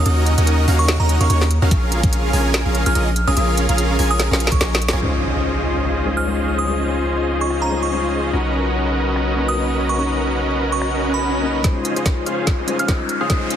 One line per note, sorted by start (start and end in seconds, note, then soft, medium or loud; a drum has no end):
0.05 0.36 D#2 loud
0.05 0.35 C#4 medium
0.05 0.35 D#4 medium
0.05 0.35 F#4 medium
0.05 0.35 A#4 medium
0.05 0.35 D#5 loud
0.05 0.13 D#6 medium
0.05 closed hi-hat medium
0.26 closed hi-hat medium
0.38 0.66 D#2 loud
0.38 0.66 C#4 medium
0.38 0.66 D#4 medium
0.38 0.66 F#4 medium
0.38 0.66 A#4 medium
0.38 0.66 D#5 loud
0.38 closed hi-hat medium
0.47 closed hi-hat medium
0.68 0.98 D#2 medium
0.68 0.97 C#4 medium
0.68 0.97 D#4 medium
0.68 0.97 F#4 medium
0.68 0.97 A#4 medium
0.68 0.97 F5 loud
0.68 open hi-hat loud
0.79 0.94 C#6 medium
0.88 snare loud
0.88 closed hi-hat medium
1.00 1.18 D#2 loud
1.00 1.18 C#4 medium
1.00 1.18 D#4 medium
1.00 1.18 F#4 medium
1.00 1.18 A#4 medium
1.00 1.18 D#5 medium
1.00 1.15 A#5 medium
1.09 closed hi-hat medium
1.21 1.28 D#2 loud
1.21 1.28 C#4 medium
1.21 1.28 D#4 medium
1.21 1.28 F#4 medium
1.21 1.28 A#4 medium
1.21 1.28 F5 medium
1.21 1.27 C#6 medium
1.21 closed hi-hat medium
1.30 1.60 D#2 loud
1.30 1.43 C#4 medium
1.30 1.43 D#4 medium
1.30 1.43 F#4 medium
1.30 1.43 A#4 medium
1.30 1.43 C#5 medium
1.30 1.37 C#6 medium
1.30 closed hi-hat medium
1.41 snare soft
1.51 closed hi-hat medium
1.62 1.69 D#2 loud
1.62 1.69 C#4 medium
1.62 1.69 D#4 medium
1.62 1.69 F#4 medium
1.62 1.69 A#4 medium
1.62 1.69 F5 loud
1.71 2.01 A#1 loud
1.71 2.01 C#4 medium
1.71 2.01 G#4 medium
1.71 kick loud
1.71 closed hi-hat medium
1.92 closed hi-hat medium
2.03 2.32 A#1 medium
2.03 2.31 C#4 medium
2.03 2.31 G#4 medium
2.03 2.31 A#4 medium
2.03 kick loud
2.03 closed hi-hat medium
2.13 closed hi-hat medium
2.33 2.63 A#1 loud
2.33 2.63 C#4 medium
2.33 2.63 F4 medium
2.33 2.63 G#4 medium
2.33 2.63 A#4 medium
2.33 2.63 G#5 loud
2.33 open hi-hat loud
2.54 snare loud
2.54 closed hi-hat medium
2.65 2.84 A#1 medium
2.65 2.84 C#4 medium
2.65 2.84 F4 medium
2.65 2.84 G#4 medium
2.65 2.84 A#4 medium
2.65 2.84 F5 medium
2.75 closed hi-hat medium
2.86 2.94 A#1 loud
2.86 2.93 C#4 medium
2.86 2.93 F4 medium
2.86 2.93 G#4 medium
2.86 2.93 A#4 medium
2.86 2.93 G#5 medium
2.86 3.02 F6 medium
2.86 closed hi-hat medium
2.95 3.25 A#1 loud
2.95 3.09 C#4 medium
2.95 3.09 F4 medium
2.95 3.09 G#4 medium
2.95 3.09 A#4 medium
2.95 3.09 D#5 medium
2.95 closed hi-hat medium
3.16 closed hi-hat medium
3.27 3.35 A#1 loud
3.27 3.35 C#4 medium
3.27 3.35 F4 medium
3.27 3.35 G#4 medium
3.27 3.35 A#4 medium
3.27 3.35 G#5 loud
3.27 3.33 D#6 medium
3.37 3.67 A#1 loud
3.37 3.66 C#4 medium
3.37 3.66 F4 medium
3.37 3.66 G#4 medium
3.37 3.66 A#4 medium
3.37 3.66 F5 loud
3.37 3.44 D#6 medium
3.37 closed hi-hat medium
3.57 closed hi-hat medium
3.69 3.97 A#1 loud
3.69 3.97 C#4 medium
3.69 3.97 F4 medium
3.69 3.97 G#4 medium
3.69 3.97 A#4 medium
3.69 3.97 F5 loud
3.69 closed hi-hat medium
3.78 closed hi-hat medium
3.99 4.29 A#1 medium
3.99 4.28 C#4 medium
3.99 4.28 F4 medium
3.99 4.28 G#4 medium
3.99 4.28 A#4 medium
3.99 4.28 G#5 loud
3.99 open hi-hat loud
4.11 4.26 D#6 medium
4.20 snare medium
4.20 closed hi-hat medium
4.31 4.50 A#1 loud
4.31 4.50 C#4 medium
4.31 4.50 F4 medium
4.31 4.50 G#4 medium
4.31 4.50 A#4 medium
4.31 4.50 F5 medium
4.31 snare medium
4.40 closed hi-hat medium
4.47 snare medium
4.52 4.59 A#1 medium
4.52 4.59 C#4 medium
4.52 4.93 C#6 medium
4.52 kick medium
4.52 closed hi-hat medium
4.61 4.91 A#1 loud
4.61 4.74 C#4 medium
4.61 4.74 F4 medium
4.61 4.74 G#4 medium
4.61 4.74 A#4 medium
4.61 4.74 D#5 medium
4.61 snare medium
4.61 closed hi-hat medium
4.75 snare loud
4.82 closed hi-hat medium
4.88 snare loud
4.93 5.01 A#1 loud
4.93 5.00 C#4 medium
4.93 5.00 F4 medium
4.93 5.00 G#4 medium
4.93 5.00 A#4 medium
4.93 5.00 G#5 medium
5.00 8.32 C#2 medium
5.00 6.03 G#3 medium
5.00 6.03 C#4 medium
5.00 8.31 C#4 medium
5.00 6.04 D#4 medium
5.00 8.31 F4 medium
5.00 6.04 F4 medium
5.00 8.31 G#4 medium
5.00 8.31 C5 medium
5.00 6.05 C5 medium
5.00 8.31 D#5 medium
5.00 impact medium
5.85 finger snap medium
6.05 6.24 G#3 medium
6.05 6.24 C#4 medium
6.05 6.24 D#4 medium
6.05 6.25 F4 medium
6.05 6.25 C5 medium
6.17 6.32 F6 medium
6.26 6.64 G#3 medium
6.26 6.65 C#4 medium
6.26 6.66 D#4 medium
6.26 6.66 F4 medium
6.26 6.66 C5 medium
6.58 6.64 D#6 medium
6.66 7.68 G#3 medium
6.66 7.69 C#4 medium
6.66 7.69 D#4 medium
6.66 7.70 F4 medium
6.66 7.70 C5 medium
6.66 6.75 D#6 medium
7.41 7.57 C#6 medium
7.50 finger snap medium
7.62 7.77 A#5 medium
7.70 7.89 G#3 medium
7.70 7.90 C#4 medium
7.70 7.90 D#4 medium
7.70 7.90 F4 medium
7.70 7.90 C5 medium
7.83 7.89 C#6 medium
7.91 8.31 G#3 medium
7.91 8.31 C#4 medium
7.91 8.31 D#4 medium
7.91 8.31 F4 medium
7.91 8.32 C5 medium
7.91 7.99 C#6 medium
8.32 11.63 B1 medium
8.32 9.34 C#4 medium
8.32 11.62 C#4 medium
8.32 9.35 D#4 medium
8.32 11.62 F#4 medium
8.32 9.35 F#4 medium
8.32 11.62 A#4 medium
8.32 11.62 B4 medium
8.32 11.62 D#5 medium
9.16 finger snap medium
9.36 9.55 A#3 medium
9.36 9.55 C#4 medium
9.36 9.55 D#4 medium
9.36 9.56 F#4 medium
9.36 9.56 B4 medium
9.48 9.64 D#6 medium
9.57 9.96 C#4 medium
9.57 9.97 D#4 medium
9.57 9.97 F#4 medium
9.57 closed hi-hat medium
9.89 9.95 C#6 medium
9.98 11.00 C#4 medium
9.98 11.00 D#4 medium
9.98 11.01 F#4 medium
9.98 10.06 C#6 medium
10.72 10.88 C#6 medium
10.82 finger snap medium
10.82 swell medium
11.14 11.55 B5 medium
11.23 closed hi-hat medium
11.43 11.62 A#3 medium
11.43 11.62 C#4 medium
11.43 11.62 D#4 medium
11.43 11.62 F#4 medium
11.43 11.63 D#5 medium
11.43 closed hi-hat medium
11.62 11.94 C#2 medium
11.62 12.65 G#3 medium
11.62 12.65 C#4 medium
11.62 12.66 D#4 medium
11.62 11.94 F4 medium
11.62 12.66 F4 medium
11.62 11.94 C5 medium
11.62 12.67 C5 medium
11.62 kick medium
11.62 snare soft
11.62 closed hi-hat medium
11.62 riser medium
11.85 closed hi-hat medium
11.96 12.25 C#2 medium
11.96 12.24 C#4 medium
11.96 12.24 F4 medium
11.96 12.24 G#4 medium
11.96 12.24 C5 medium
11.96 12.24 D#5 medium
11.96 closed hi-hat medium
12.06 kick medium
12.06 snare soft
12.06 closed hi-hat medium
12.26 12.56 C#2 medium
12.26 12.56 C#4 medium
12.26 12.56 F4 medium
12.26 12.56 G#4 medium
12.26 12.56 C5 medium
12.26 12.56 F5 medium
12.26 closed hi-hat medium
12.47 kick medium
12.47 snare soft
12.47 closed hi-hat medium
12.59 12.77 C#2 medium
12.59 12.77 C#4 medium
12.59 12.77 F4 medium
12.59 12.77 G#4 medium
12.59 12.77 C5 medium
12.59 12.77 D#5 medium
12.67 12.86 G#3 medium
12.67 12.86 C#4 medium
12.67 12.86 D#4 medium
12.67 12.87 F4 medium
12.67 12.87 C5 medium
12.67 closed hi-hat medium
12.79 12.87 C#2 medium
12.79 12.86 C#4 medium
12.79 12.86 F4 medium
12.79 12.86 G#4 medium
12.79 12.86 C5 medium
12.79 12.86 F5 medium
12.79 12.95 F6 medium
12.79 closed hi-hat medium
12.87 13.26 G#3 medium
12.87 13.27 C#4 medium
12.87 13.02 C#4 medium
12.87 13.28 D#4 medium
12.87 13.28 F4 medium
12.87 13.02 G#4 medium
12.87 13.02 C5 medium
12.87 13.02 D#5 medium
12.87 kick medium
12.87 snare soft
12.87 closed hi-hat medium
13.09 closed hi-hat medium
13.21 13.28 C#2 medium
13.21 13.28 C#4 medium
13.21 13.28 F4 medium
13.21 13.28 G#4 medium
13.21 13.28 C5 medium
13.21 13.28 F5 medium
13.21 13.27 D#6 medium
13.28 13.56 G#3 medium
13.28 13.56 C#4 medium
13.28 13.56 D#4 medium
13.28 13.56 F4 medium
13.28 13.56 G#4 medium
13.28 13.56 C5 medium
13.28 kick medium
13.28 snare soft
13.28 closed hi-hat medium
13.50 closed hi-hat medium